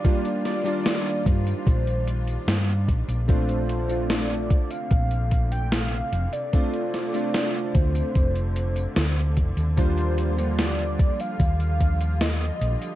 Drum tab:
HH |xxxxxxxxxxxxx-xx|xxxxxxxxxxxxx-xx|xxxxxxxxxxxxx-xx|xxxxxxxxxxxxx-xx|
TB |xx-xxx-xxx-xxx-x|xx-xxx-xxx-xxx-x|xx-xxx-xxx-xxx-x|xx-xxx-xxx-xxx-x|
SD |--o-o-------o---|----o-------o---|--o-o-------o---|----o-------o---|
BD |o-----o-o-----o-|o-----o-o-o-----|o-----o-o-----o-|o-----o-o-o-----|